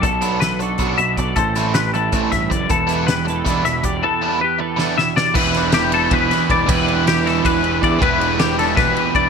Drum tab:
CC |-------|-------|-------|-------|
RD |-------|-------|-------|-------|
HH |xxxxxxx|xxxxxxx|xxxxxxx|-------|
SD |--o----|-oo--o-|--o-oo-|----ooo|
BD |o---o-o|o---ooo|o---o-o|-------|

CC |x------|-------|-------|
RD |-xxxxxx|xxxxxxx|xxxxxxx|
HH |-------|-------|-------|
SD |-oo--o-|--oo---|--ooo--|
BD |o---o-o|o---o-o|o---o-o|